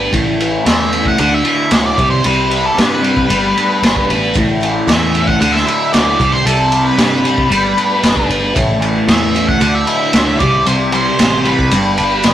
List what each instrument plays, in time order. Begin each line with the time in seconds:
Already playing: overdriven electric guitar G3 D4 B4, transistor combo organ A3 B3 D4 G4
0.12 picked electric bass A1, overdriven electric guitar A2, transistor combo organ C#4 E4 A4, kick, ride
0.40 overdriven electric guitar E3, ride
0.65 picked electric bass E2, overdriven electric guitar E3, lead electric guitar E5, snare, ride
0.93 overdriven electric guitar A3, ride
1.05 lead electric guitar F#5, kick
1.18 picked electric bass D2, overdriven electric guitar D3, transistor combo organ A3 D4 F#4, lead electric guitar F#5, ride
1.34 lead electric guitar E5
1.44 overdriven electric guitar E4, ride
1.71 picked electric bass D2, overdriven electric guitar F#3, lead electric guitar D5, snare, ride
1.77 lead electric guitar C#5
1.86 lead electric guitar D5
1.98 picked electric bass C2, overdriven electric guitar C3, transistor combo organ G3 C4 G4, kick, ride
2.10 lead electric guitar C5
2.24 picked electric bass C2, overdriven electric guitar C3, lead electric guitar B4, ride
2.50 overdriven electric guitar G3, ride
2.66 lead electric guitar A4
2.76 picked electric bass G2, overdriven electric guitar C3, lead electric guitar B4, snare, ride
3.02 overdriven electric guitar G3, ride
3.17 kick
3.29 picked electric bass G1, overdriven electric guitar G3, transistor combo organ A3 B3 D4, ride
3.56 overdriven electric guitar B4, ride
3.82 picked electric bass G1, overdriven electric guitar D4, snare, ride
3.96 kick
4.09 picked electric bass A1, overdriven electric guitar B4, ride
4.34 picked electric bass A1, overdriven electric guitar A2, transistor combo organ C#4 E4 A4, kick, ride, maracas
4.48 maracas
4.60 overdriven electric guitar E3, ride, maracas
4.87 picked electric bass E2, overdriven electric guitar E3, lead electric guitar E5, snare, ride, maracas
5.01 maracas
5.14 overdriven electric guitar A3, ride, maracas
5.27 lead electric guitar F#5, kick
5.40 picked electric bass D2, overdriven electric guitar D3, transistor combo organ A3 D4 F#4, lead electric guitar F#5, ride, maracas
5.52 lead electric guitar E5, snare
5.66 overdriven electric guitar E4, ride, maracas
5.82 maracas
5.93 picked electric bass D2, overdriven electric guitar F#3, lead electric guitar D5, snare, ride, maracas
6.09 maracas
6.19 picked electric bass C2, overdriven electric guitar C3, transistor combo organ G3 C4 G4, kick, ride, maracas
6.32 lead electric guitar C5
6.45 picked electric bass C2, overdriven electric guitar C3, lead electric guitar A4, ride, maracas
6.61 maracas
6.72 overdriven electric guitar G3, ride, maracas
6.85 lead electric guitar B4
6.98 picked electric bass G2, overdriven electric guitar C3, lead electric guitar B4, snare, ride, maracas
7.14 maracas
7.25 overdriven electric guitar G3, ride, maracas
7.38 kick
7.49 picked electric bass G1, overdriven electric guitar G3, transistor combo organ A3 B3 D4, ride, maracas
7.77 overdriven electric guitar B4, ride, maracas
7.91 maracas
8.03 picked electric bass G1, overdriven electric guitar D4, snare, ride, maracas
8.17 kick, maracas
8.28 picked electric bass G1, overdriven electric guitar B4, ride, maracas
8.54 picked electric bass A1, overdriven electric guitar A2, transistor combo organ A3 C#4 E4 A4, kick, ride, maracas
8.69 maracas
8.81 overdriven electric guitar E3, ride, maracas
9.08 picked electric bass E2, overdriven electric guitar E3, lead electric guitar E5, snare, ride, maracas
9.23 maracas
9.35 overdriven electric guitar A3, ride, maracas
9.48 lead electric guitar F#5, kick
9.61 picked electric bass D2, overdriven electric guitar D3, transistor combo organ D4 F#4, lead electric guitar F#5, ride, maracas
9.75 lead electric guitar E5
9.87 overdriven electric guitar E4, ride, maracas
10.02 maracas
10.13 picked electric bass D2, overdriven electric guitar F#3, snare, ride, maracas
10.27 maracas
10.39 picked electric bass C2, overdriven electric guitar C3, transistor combo organ G3 C4 E4 G4, lead electric guitar D5, kick, ride, maracas
10.66 picked electric bass C2, overdriven electric guitar C3, lead electric guitar C5, ride, maracas
10.81 maracas
10.92 overdriven electric guitar G3, lead electric guitar C5, ride, maracas
11.19 picked electric bass A1, overdriven electric guitar C3, snare, ride, maracas
11.44 overdriven electric guitar G3, lead electric guitar B4, ride
11.59 kick, maracas
11.71 picked electric bass G1, overdriven electric guitar G2, transistor combo organ B3 D4, ride, maracas
11.85 maracas
11.98 picked electric bass G1, overdriven electric guitar D4, ride, maracas
12.11 maracas
12.23 picked electric bass F#1, overdriven electric guitar G3, snare, ride, maracas